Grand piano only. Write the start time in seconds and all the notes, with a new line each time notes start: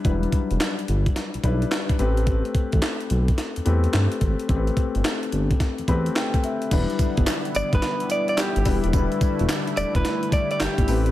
Already playing: G3 D4 E4 B4
0.04 F#3 D4 E4 B4
0.11 G3
1.44 G3 D4 E4 B4
1.99 A3 C4 G4 B4
3.65 A3 C4 G4 B4
4.48 A3 C4 G4 A4
4.56 B4
5.88 A3 C4 G4 B4 B5
6.16 G5
6.44 E5
6.71 F#3 D4 E4 B4
6.78 G3
8.65 G3 D4 E4 B4
8.93 G3 D4 E4 B4
10.87 A3 C4 G4 B4